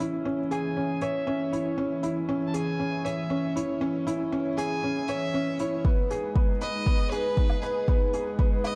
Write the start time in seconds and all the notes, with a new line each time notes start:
Already playing: E3 C#4 G#4 C#5 E5
0.00 E4, closed hi-hat
0.25 C#4
0.51 G#4 G#5, closed hi-hat
0.77 C#4
1.01 C#5 E5, closed hi-hat
1.27 C#4
1.52 E4 C#5, closed hi-hat
1.78 C#4
2.03 E4, closed hi-hat
2.29 C#4
2.47 A5
2.54 G#4 G#5, closed hi-hat
2.80 C#4
3.05 C#5 E5, closed hi-hat
3.30 C#4
3.56 E4 C#5, closed hi-hat
3.81 C#4
4.07 E4, closed hi-hat
4.32 C#4
4.57 G#4 G#5, closed hi-hat
4.83 C#4
5.08 C#5 E5, closed hi-hat
5.34 C#4
5.59 E4 C#5, closed hi-hat
5.85 G#3 B3 D#4 B4, kick
6.10 G#4, closed hi-hat
6.36 B3, kick
6.61 B4 D#5, closed hi-hat
6.86 B3, kick
7.11 G#4 B4, closed hi-hat
7.37 B3, kick
7.50 low woodblock
7.62 G#4 B4, closed hi-hat
7.88 B3, kick
8.13 G#4, closed hi-hat
8.39 B3, kick
8.64 B4 D#5, closed hi-hat, low woodblock